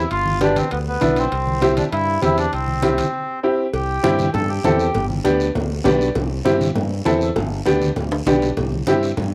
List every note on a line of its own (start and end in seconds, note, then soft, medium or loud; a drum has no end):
0.11 0.59 G1 medium
0.11 0.39 F4 loud
0.11 high conga soft
0.11 high timbale medium
0.11 long guiro medium
0.26 high conga medium
0.41 0.62 B3 medium
0.41 0.62 D4 medium
0.41 0.57 D4 medium
0.41 0.63 G4 medium
0.41 high conga medium
0.41 high timbale medium
0.41 short guiro medium
0.56 0.71 C4 medium
0.56 high conga medium
0.56 high timbale medium
0.56 short guiro medium
0.71 0.96 D2 medium
0.71 0.78 B3 medium
0.71 high timbale medium
0.71 long guiro medium
0.87 1.18 B3 medium
0.87 high conga soft
1.01 1.26 B1 medium
1.01 1.22 B3 medium
1.01 1.23 D4 medium
1.01 1.23 E4 medium
1.01 high conga medium
1.01 high timbale medium
1.01 short guiro medium
1.16 1.74 C4 medium
1.16 high timbale medium
1.16 short guiro medium
1.32 1.80 C2 medium
1.32 high conga soft
1.32 high timbale medium
1.32 long guiro medium
1.47 high conga medium
1.61 1.83 C4 medium
1.61 1.83 E4 medium
1.61 1.83 G4 medium
1.61 high conga medium
1.61 high timbale medium
1.61 short guiro medium
1.77 1.84 D4 medium
1.77 high conga medium
1.77 high timbale medium
1.77 short guiro medium
1.92 2.17 G2 medium
1.92 2.20 E4 loud
1.92 high timbale medium
1.92 long guiro medium
2.07 high conga soft
2.22 2.47 E2 medium
2.22 2.43 C4 medium
2.22 2.44 E4 medium
2.22 2.37 E4 medium
2.22 2.44 G4 medium
2.22 high conga medium
2.22 high timbale medium
2.22 short guiro medium
2.38 2.52 D4 medium
2.38 high timbale medium
2.38 short guiro medium
2.53 3.01 C2 medium
2.53 3.40 C4 medium
2.53 high conga soft
2.53 high timbale medium
2.53 long guiro medium
2.68 high conga medium
2.82 3.04 C4 medium
2.82 3.04 E4 medium
2.82 3.04 G4 medium
2.82 high conga medium
2.82 high timbale medium
2.82 short guiro medium
2.98 high conga medium
2.98 high timbale medium
2.98 short guiro medium
3.43 3.65 C4 medium
3.43 3.65 E4 medium
3.43 3.65 G4 medium
3.73 3.98 C2 medium
3.73 4.30 G4 medium
3.73 cowbell medium
3.73 high conga soft
3.73 long guiro medium
4.03 4.28 G2 medium
4.03 4.25 C4 medium
4.03 4.25 E4 medium
4.03 4.25 G4 medium
4.03 cowbell medium
4.03 high conga medium
4.03 short guiro medium
4.19 high conga medium
4.19 short guiro medium
4.33 4.58 G2 loud
4.33 4.49 A4 medium
4.33 cowbell medium
4.33 low conga medium
4.33 long guiro medium
4.49 5.05 G4 medium
4.49 high conga soft
4.64 4.89 E2 loud
4.64 4.86 C4 medium
4.64 4.86 E4 medium
4.64 4.86 A4 medium
4.64 cowbell medium
4.64 high conga medium
4.64 low conga medium
4.64 low timbale medium
4.64 short guiro medium
4.80 short guiro medium
4.94 5.19 G1 loud
4.94 cowbell loud
4.94 high conga soft
4.94 low conga medium
4.94 long guiro medium
5.10 high conga medium
5.24 5.49 D2 medium
5.24 5.46 B3 medium
5.24 5.46 D4 medium
5.24 5.46 G4 medium
5.24 cowbell medium
5.24 high conga medium
5.24 short guiro medium
5.40 short guiro medium
5.55 5.80 D2 medium
5.55 cowbell medium
5.55 low conga medium
5.55 long guiro medium
5.70 high conga soft
5.84 6.10 B1 loud
5.84 6.06 B3 medium
5.84 6.06 D4 medium
5.84 6.06 G4 medium
5.84 6.13 D5 medium
5.84 cowbell medium
5.84 high conga medium
5.84 low conga medium
5.84 low timbale medium
5.84 short guiro medium
6.01 short guiro medium
6.15 6.40 C2 medium
6.15 cowbell loud
6.15 high conga soft
6.15 low conga medium
6.15 long guiro medium
6.45 6.70 G2 medium
6.45 6.66 C4 medium
6.45 6.67 E4 medium
6.45 6.67 G4 medium
6.45 cowbell medium
6.45 high conga medium
6.45 short guiro medium
6.61 high conga medium
6.61 short guiro medium
6.75 7.00 G2 medium
6.75 cowbell medium
6.75 low conga medium
6.75 long guiro medium
6.91 high conga soft
7.05 7.30 E2 loud
7.05 7.27 C4 medium
7.05 7.27 E4 medium
7.05 7.27 A4 medium
7.05 cowbell medium
7.05 high conga medium
7.05 low timbale medium
7.05 short guiro medium
7.21 short guiro medium
7.36 7.60 G1 loud
7.36 cowbell loud
7.36 high conga soft
7.36 low conga medium
7.36 long guiro medium
7.66 7.91 D2 medium
7.66 7.87 B3 medium
7.66 7.88 D4 medium
7.66 7.88 G4 medium
7.66 cowbell medium
7.66 high conga medium
7.66 short guiro medium
7.81 high conga medium
7.81 short guiro medium
7.96 8.21 D2 medium
7.96 cowbell medium
7.96 low conga medium
7.96 long guiro medium
8.12 high conga soft
8.12 high timbale medium
8.26 8.51 B1 loud
8.26 8.48 B3 medium
8.26 8.48 D4 medium
8.26 8.48 G4 medium
8.26 cowbell medium
8.26 high conga medium
8.26 high timbale medium
8.26 short guiro medium
8.42 low timbale medium
8.42 short guiro medium
8.57 8.81 C2 loud
8.57 cowbell loud
8.57 high conga soft
8.57 low conga medium
8.57 long guiro medium
8.72 high conga medium
8.87 9.12 G2 medium
8.87 9.08 C4 medium
8.87 9.09 E4 medium
8.87 9.09 G4 medium
8.87 cowbell medium
8.87 high conga medium
8.87 short guiro medium
9.03 short guiro medium
9.17 9.34 G2 medium
9.17 cowbell medium
9.17 low conga medium
9.17 long guiro medium